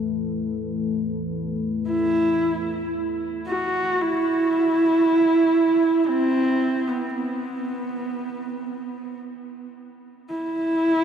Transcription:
Already playing: E3 A3 E4 A4 B4
1.86 E4
3.47 F#4
4.01 E4
6.08 C4
6.88 B3
7.15 B3
10.29 E4

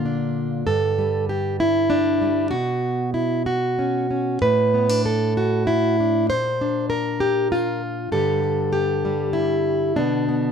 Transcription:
Already playing: A#2 D3 A#3 F4
0.06 D4
0.67 G2 A4
0.99 G3
1.29 G4
1.60 E4
1.90 D4
2.22 G3
2.51 B2 F#4
3.14 E4
3.46 F#4
3.79 C#4
4.11 C#4
4.42 A2 B4
4.74 B3
4.89 D4
5.06 A4
5.37 F#4
5.67 E4
6.00 D4
6.30 A#2 C5
6.61 D4
6.90 A#4
7.20 G4
7.52 F4
8.12 G2 D3 G3 G4 A4
8.43 G3
8.73 G4
9.05 G3
9.33 E4
9.96 B2 D3 B3 D4
10.29 B3

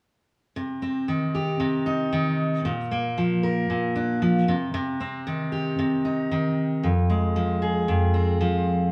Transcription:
0.56 C3
0.82 C4
1.08 D#3
1.35 G4
1.60 C3
1.86 D#4
2.13 D#3
2.65 A#2
2.91 A#3
3.18 F3
3.43 A#4
3.70 A#2
3.96 D4
4.22 F3
4.48 C3
4.74 C3
5.00 C4
5.27 D#3
5.52 G4
5.79 C3
6.05 D#4
6.32 D#3
6.83 F2
7.10 G#3
7.36 F3
7.62 G#4
7.88 F2
8.14 C4
8.41 F3

